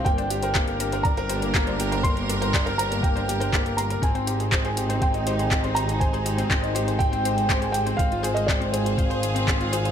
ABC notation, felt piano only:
X:1
M:4/4
L:1/16
Q:1/4=121
K:Ablyd
V:1 name="Felt piano"
g6 z2 b8 | c'6 b2 g6 b2 | a6 z2 g6 b2 | a6 z2 g6 g2 |
f3 e d2 c8- c2 |]